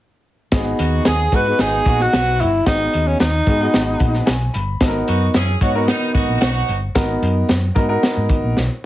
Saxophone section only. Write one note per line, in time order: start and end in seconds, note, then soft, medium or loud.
0.79 1.01 B3 medium
0.79 1.01 D#4 medium
0.79 1.01 F#4 medium
1.05 1.27 B3 medium
1.05 1.27 D#4 medium
1.05 1.27 G#4 medium
1.32 1.54 B3 medium
1.32 1.54 D#4 medium
1.32 1.54 F#4 medium
1.59 1.81 G#3 medium
1.59 1.81 B3 medium
1.59 1.81 D#4 loud
1.86 2.08 B3 medium
1.86 2.08 D#4 medium
1.86 2.08 F#4 medium
2.13 2.51 B3 medium
2.13 2.51 D#4 medium
2.13 2.51 F#4 medium
5.09 5.30 B3 medium
5.09 5.30 D#4 medium
5.09 5.30 F#4 medium
5.35 5.56 C#4 medium
5.35 5.56 E4 medium
5.35 5.56 G#4 loud
5.62 5.84 B3 medium
5.62 5.83 D#4 medium
5.62 5.83 F#4 medium
5.87 6.09 D#3 medium
5.87 6.09 B3 medium
5.87 6.09 D#4 loud
6.14 6.36 B3 medium
6.14 6.36 D#4 medium
6.14 6.36 F#4 medium
6.40 6.79 B3 medium
6.40 6.79 D#4 medium
6.40 6.79 F#4 loud